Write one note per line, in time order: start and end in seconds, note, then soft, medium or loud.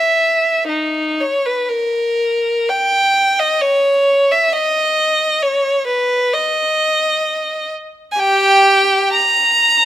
0.00 0.69 E5 medium
0.68 1.19 D#4 soft
1.20 1.45 C#5 medium
1.46 1.69 B4 soft
1.69 2.70 A#4 soft
2.69 3.39 G5 medium
3.39 3.62 D#5 medium
3.62 4.30 C#5 medium
4.31 4.54 E5 medium
4.53 5.41 D#5 medium
5.42 5.87 C#5 medium
5.87 6.32 B4 medium
6.33 7.72 D#5 medium
8.12 8.19 G#5 soft
8.19 9.09 G4 medium
8.19 9.13 G5 medium
9.13 9.85 A#5 medium